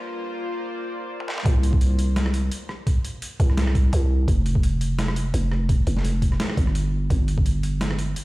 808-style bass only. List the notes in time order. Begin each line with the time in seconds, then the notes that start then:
1.46 C2
3.40 C2
3.93 C2
4.28 F1
5.34 F1
5.87 F1
6.57 G1
7.10 G1